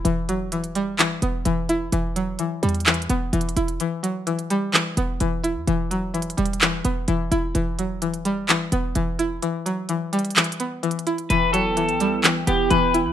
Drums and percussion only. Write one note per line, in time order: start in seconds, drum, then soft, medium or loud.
0.05 closed hi-hat medium
0.29 closed hi-hat medium
0.52 closed hi-hat medium
0.64 closed hi-hat soft
0.75 closed hi-hat medium
0.99 clap loud
0.99 closed hi-hat medium
1.22 closed hi-hat medium
1.45 closed hi-hat medium
1.69 closed hi-hat medium
1.92 closed hi-hat medium
2.16 closed hi-hat medium
2.39 closed hi-hat medium
2.63 closed hi-hat medium
2.63 open hi-hat medium
2.69 closed hi-hat medium
2.75 closed hi-hat medium
2.80 closed hi-hat medium
2.86 clap loud
2.86 closed hi-hat medium
2.94 closed hi-hat medium
3.02 closed hi-hat medium
3.10 closed hi-hat medium
3.33 closed hi-hat medium
3.41 closed hi-hat medium
3.49 closed hi-hat medium
3.57 closed hi-hat medium
3.68 closed hi-hat soft
3.80 closed hi-hat medium
4.04 closed hi-hat medium
4.27 closed hi-hat medium
4.39 closed hi-hat medium
4.50 closed hi-hat medium
4.74 clap loud
4.74 closed hi-hat medium
4.97 closed hi-hat medium
5.20 closed hi-hat medium
5.44 closed hi-hat medium
5.67 closed hi-hat medium
5.91 closed hi-hat medium
6.14 closed hi-hat medium
6.22 closed hi-hat medium
6.30 closed hi-hat medium
6.38 closed hi-hat medium
6.38 open hi-hat medium
6.46 closed hi-hat medium
6.53 closed hi-hat medium
6.61 clap loud
6.61 closed hi-hat medium
6.85 closed hi-hat medium
7.08 closed hi-hat medium
7.32 closed hi-hat medium
7.55 closed hi-hat medium
7.79 closed hi-hat medium
8.02 closed hi-hat medium
8.14 closed hi-hat soft
8.25 closed hi-hat medium
8.49 clap loud
8.49 closed hi-hat medium
8.72 closed hi-hat medium
8.95 closed hi-hat medium
9.19 closed hi-hat medium
9.42 closed hi-hat medium
9.66 closed hi-hat medium
9.89 closed hi-hat medium
10.13 closed hi-hat medium
10.13 open hi-hat medium
10.19 closed hi-hat medium
10.25 closed hi-hat medium
10.30 closed hi-hat medium
10.36 clap loud
10.36 closed hi-hat medium
10.44 closed hi-hat medium
10.52 closed hi-hat medium
10.60 closed hi-hat medium
10.83 closed hi-hat medium
10.91 closed hi-hat medium
10.99 closed hi-hat medium
11.07 closed hi-hat medium
11.18 closed hi-hat soft
11.30 closed hi-hat medium
11.54 closed hi-hat medium
11.77 closed hi-hat medium
11.89 closed hi-hat medium
12.00 closed hi-hat medium
12.24 clap loud
12.24 closed hi-hat medium
12.47 closed hi-hat medium
12.71 closed hi-hat medium
12.94 closed hi-hat medium